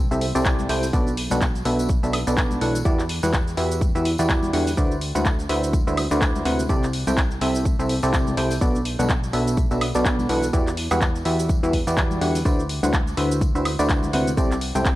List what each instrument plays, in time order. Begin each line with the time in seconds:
0.11 analog synth bass C2, fm electric piano C3 E4 G4 A4 C5 E5, tambourine, shaker
0.21 open hi-hat
0.35 analog synth bass C2, fm electric piano C3 E4 G4 A4 C5 D5, tambourine, shaker
0.45 kick, clap, tambourine, shaker
0.59 tambourine, high conga, shaker
0.69 analog synth bass C2, fm electric piano E4 G4 A4 C5 G5, open hi-hat
0.83 open hi-hat, tambourine, shaker
0.93 analog synth bass B1, fm electric piano B2 D4 F#4 A4 B4 D5, kick, tambourine, shaker
1.07 tambourine, shaker
1.17 open hi-hat
1.30 analog synth bass B1, fm electric piano B2 D4 F#4 A4 B4 F#5, tambourine, high conga, shaker
1.41 kick, clap, tambourine, shaker
1.55 tambourine, shaker
1.65 analog synth bass B1, fm electric piano B2 D4 F#4 A4 B4 E5, open hi-hat
1.79 tambourine, shaker
1.89 kick, tambourine, high conga, shaker
2.03 analog synth bass B1, fm electric piano B2 D4 F#4 A4 B4 E5, tambourine, shaker
2.13 open hi-hat, high woodblock
2.27 analog synth bass B1, fm electric piano B2 D4 F#4 A4 B4 D5, tambourine, shaker
2.37 kick, clap, tambourine, shaker
2.51 tambourine, high conga, shaker
2.61 analog synth bass B1, fm electric piano E3 D4 F#4 A4 B4 F#5, open hi-hat
2.75 tambourine, shaker
2.85 analog synth bass E2, fm electric piano E3 E4 F#4 G4 B4 D5, kick, tambourine, shaker
2.99 clap, tambourine, shaker
3.09 open hi-hat
3.23 analog synth bass E2, fm electric piano E3 E4 F#4 G4 B4 F#5, tambourine, high conga, shaker
3.33 kick, clap, tambourine, shaker
3.47 tambourine, shaker
3.57 analog synth bass E2, fm electric piano E3 E4 F#4 G4 B4 E5, open hi-hat
3.71 tambourine, shaker
3.81 kick, tambourine, high conga, shaker
3.95 analog synth bass E2, fm electric piano E3 E4 F#4 G4 B4 E5, tambourine, shaker
4.05 open hi-hat
4.18 analog synth bass E2, fm electric piano E3 E4 F#4 G4 B4 D5, tambourine, shaker
4.29 kick, clap, tambourine, shaker
4.43 tambourine, high conga, shaker
4.53 analog synth bass E2, fm electric piano D3 E4 F#4 G4 B4 F#5, open hi-hat
4.67 open hi-hat, tambourine, shaker
4.77 analog synth bass D2, fm electric piano D3 E4 F#4 B4 C5 D5, kick, tambourine, shaker
4.91 tambourine, shaker
5.01 open hi-hat
5.15 analog synth bass D2, fm electric piano D3 E4 F#4 B4 C5 F#5, tambourine, high conga, shaker
5.25 kick, clap, tambourine, shaker
5.39 tambourine, shaker
5.49 analog synth bass D2, fm electric piano D3 E4 F#4 B4 C5 E5, open hi-hat
5.64 tambourine, shaker
5.73 kick, tambourine, high conga, shaker
5.87 analog synth bass D2, fm electric piano D3 E4 F#4 B4 C5 E5, tambourine, shaker
5.97 open hi-hat, high woodblock
6.11 analog synth bass D2, fm electric piano D3 E4 F#4 B4 C5 D5, tambourine, shaker
6.21 kick, clap, tambourine, shaker
6.35 tambourine, high conga, shaker
6.45 analog synth bass D2, fm electric piano C3 E4 F#4 B4 C5 F#5, open hi-hat
6.59 tambourine, shaker
6.69 analog synth bass C2, fm electric piano C3 E4 G4 A4 C5 D5, kick, tambourine, shaker
6.83 clap, tambourine, shaker
6.93 open hi-hat
7.07 analog synth bass C2, fm electric piano C3 E4 G4 A4 C5 G5, tambourine, high conga, shaker
7.17 kick, clap, shaker
7.31 tambourine, shaker
7.41 analog synth bass C2, fm electric piano C3 E4 G4 A4 C5 E5, open hi-hat
7.55 tambourine, shaker
7.65 kick, tambourine, high conga, shaker
7.79 analog synth bass C2, fm electric piano C3 E4 G4 A4 C5 E5, tambourine, shaker
7.89 open hi-hat
8.02 analog synth bass C2, fm electric piano C3 E4 G4 A4 C5 D5, tambourine, shaker
8.13 kick, clap, tambourine, shaker
8.27 tambourine, high conga, shaker
8.37 analog synth bass C2, fm electric piano E4 G4 A4 C5 G5, open hi-hat
8.50 open hi-hat, tambourine, shaker
8.61 analog synth bass B1, fm electric piano B2 D4 F#4 A4 B4 D5, kick, shaker
8.75 tambourine, shaker
8.85 open hi-hat
8.99 analog synth bass B1, fm electric piano B2 D4 F#4 A4 B4 F#5, tambourine, high conga, shaker
9.09 kick, clap, tambourine, shaker
9.23 tambourine, shaker
9.33 analog synth bass B1, fm electric piano B2 D4 F#4 A4 B4 E5, open hi-hat
9.47 tambourine, shaker
9.57 kick, tambourine, high conga, shaker
9.71 analog synth bass B1, fm electric piano B2 D4 F#4 A4 B4 E5, tambourine, shaker
9.81 open hi-hat, high woodblock
9.94 analog synth bass B1, fm electric piano B2 D4 F#4 A4 B4 D5, tambourine, shaker
10.05 kick, clap, tambourine, shaker
10.19 tambourine, high conga, shaker
10.29 analog synth bass B1, fm electric piano E3 D4 F#4 A4 B4 F#5, open hi-hat
10.42 tambourine, shaker
10.53 analog synth bass E2, fm electric piano E3 E4 F#4 G4 B4 D5, kick, tambourine, shaker
10.67 clap, tambourine, shaker
10.77 open hi-hat
10.91 analog synth bass E2, fm electric piano E3 E4 F#4 G4 B4 F#5, tambourine, high conga, high woodblock, shaker
11.01 kick, clap, tambourine, shaker
11.15 tambourine, shaker
11.25 analog synth bass E2, fm electric piano E3 E4 F#4 G4 B4 E5, open hi-hat
11.39 tambourine, shaker
11.49 kick, tambourine, high conga, shaker
11.63 analog synth bass E2, fm electric piano E3 E4 F#4 G4 B4 E5, tambourine, shaker
11.73 kick, open hi-hat
11.87 analog synth bass E2, fm electric piano E3 E4 F#4 G4 B4 D5, tambourine, shaker
11.97 kick, clap, tambourine, shaker
12.11 tambourine, high conga, shaker
12.21 analog synth bass E2, fm electric piano D3 E4 F#4 G4 B4 F#5, open hi-hat
12.35 open hi-hat, tambourine, shaker
12.45 analog synth bass D2, fm electric piano D3 E4 F#4 B4 C5 D5, kick, tambourine, shaker
12.59 tambourine, shaker
12.69 open hi-hat
12.83 analog synth bass D2, fm electric piano D3 E4 F#4 B4 C5 F#5, tambourine, high conga, shaker
12.93 kick, clap, tambourine, shaker
13.07 tambourine, shaker
13.17 analog synth bass D2, fm electric piano D3 E4 F#4 B4 C5 E5, open hi-hat
13.31 tambourine, shaker
13.40 kick, tambourine, high conga, shaker
13.55 analog synth bass D2, fm electric piano D3 E4 F#4 B4 C5 E5, tambourine, shaker
13.65 open hi-hat, high woodblock
13.79 analog synth bass D2, fm electric piano D3 E4 F#4 B4 C5 D5, tambourine, shaker
13.89 kick, clap, tambourine, shaker
14.03 tambourine, high conga, shaker
14.13 analog synth bass D2, fm electric piano C3 E4 F#4 B4 C5 F#5, open hi-hat
14.27 tambourine, shaker
14.37 analog synth bass C2, fm electric piano C3 E4 G4 A4 C5 D5, kick, tambourine, shaker
14.51 clap, tambourine, shaker
14.61 open hi-hat
14.75 analog synth bass C2, fm electric piano C3 E4 G4 A4 C5 G5, tambourine, high conga, shaker
14.85 kick, clap, tambourine, shaker